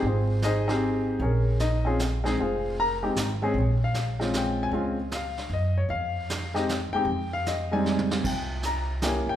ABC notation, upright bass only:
X:1
M:3/4
L:1/8
Q:"Swing" 1/4=154
K:Fm
V:1 name="Upright bass" clef=bass
A,,,6 | B,,,6 | F,,,4 A,,,2 | B,,,6 |
D,,4 _G,,2 | F,,4- F,, E,, | F,,6 | C,,4- C,, C,, |]